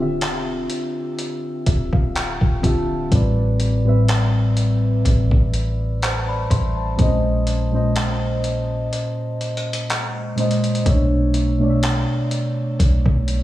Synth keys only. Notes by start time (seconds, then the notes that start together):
Already playing: D3 E5
0.00 C4 F4 G4 E5
1.67 E5
1.93 F5
2.15 G5
2.61 D3 C4 F4 G4 A5
2.66 E5
3.09 A2 G3 C4 B4
3.14 D5
3.84 A2 G3 C4 B4
3.89 E5
6.02 C5 A5
6.28 D5 B5
6.50 E5 C6
6.77 C5 A5
6.96 A#2 G#3 C4 C5
7.01 D#5
7.05 C#4
7.71 A#2 G#3 C#4 C5
7.76 D#5
10.35 A#2 G#3 C#4 C5
10.40 D#5
10.84 B2 A3 C#4 C#5
10.89 E5
10.93 D4
11.58 B2 A3 D4 C#5
11.63 D5
11.70 E5